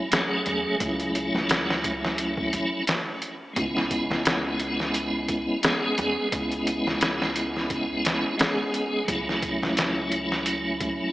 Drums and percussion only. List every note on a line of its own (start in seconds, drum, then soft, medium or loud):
0.12 snare loud
0.12 closed hi-hat medium
0.46 closed hi-hat medium
0.80 kick loud
0.80 closed hi-hat medium
1.00 closed hi-hat soft
1.15 closed hi-hat medium
1.36 snare soft
1.49 snare loud
1.49 closed hi-hat medium
1.70 snare medium
1.84 kick medium
1.84 closed hi-hat medium
2.05 snare medium
2.18 closed hi-hat medium
2.37 kick medium
2.53 closed hi-hat medium
2.87 snare loud
2.87 closed hi-hat medium
3.22 closed hi-hat medium
3.56 kick loud
3.56 closed hi-hat medium
3.77 snare soft
3.91 kick medium
3.91 closed hi-hat medium
4.11 snare soft
4.25 snare loud
4.25 closed hi-hat medium
4.60 closed hi-hat medium
4.80 snare soft
4.94 closed hi-hat medium
5.28 kick medium
5.28 closed hi-hat medium
5.63 snare loud
5.63 closed hi-hat medium
5.98 closed hi-hat medium
6.32 kick medium
6.32 closed hi-hat medium
6.52 closed hi-hat soft
6.67 closed hi-hat medium
6.88 snare soft
7.01 snare loud
7.01 closed hi-hat medium
7.22 snare medium
7.36 closed hi-hat medium
7.57 snare soft
7.70 kick medium
7.70 closed hi-hat medium
8.05 snare loud
8.05 closed hi-hat medium
8.39 snare loud
8.39 closed hi-hat medium
8.74 closed hi-hat medium
9.08 kick loud
9.08 closed hi-hat medium
9.29 snare soft
9.43 kick medium
9.43 closed hi-hat medium
9.63 snare soft
9.77 snare loud
9.77 closed hi-hat medium
10.12 closed hi-hat medium
10.32 snare soft
10.46 closed hi-hat medium
10.80 kick medium
10.80 closed hi-hat medium